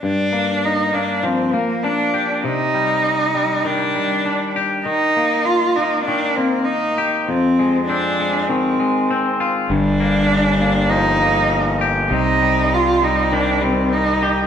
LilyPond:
<<
  \new Staff \with { instrumentName = "Cello" } { \time 4/4 \key g \phrygian \tempo 4 = 99 d'4 ees'8 d'8 c'8 bes8 d'8. r16 | ees'2 d'4. r8 | ees'4 f'8 ees'8 d'8 c'8 ees'8. r16 | c'4 d'4 c'4. r8 |
d'2 ees'4. r8 | ees'4 f'8 ees'8 d'8 c'8 ees'8. r16 | }
  \new Staff \with { instrumentName = "Clean electric guitar" } { \clef bass \time 4/4 \key g \phrygian g,8 bes4 bes8 f8 bes8 d'8 g'8 | c8 g4 g8 ees8 g8 d'8 g'8 | ees8 bes4 bes8 ees8 bes4 g'8 | f,8 aes8 c'8 aes8 ees8 aes8 c'8 f'8 |
g,8 bes4 bes8 f8 bes4 g'8 | c8 g4 g8 ees8 g4 g'8 | }
  \new Staff \with { instrumentName = "Fingered electric bass" } { \clef bass \time 4/4 \key g \phrygian r1 | r1 | r1 | r1 |
g,,1 | c,1 | }
>>